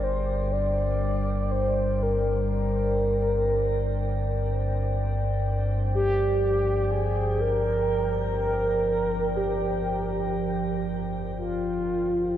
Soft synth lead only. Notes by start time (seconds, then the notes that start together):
0.03 C5
0.52 D5
1.51 C5
2.02 A#4
2.52 A#4
5.95 G4
6.91 G#4
7.41 A#4
8.37 A#4
9.37 G4
11.36 F4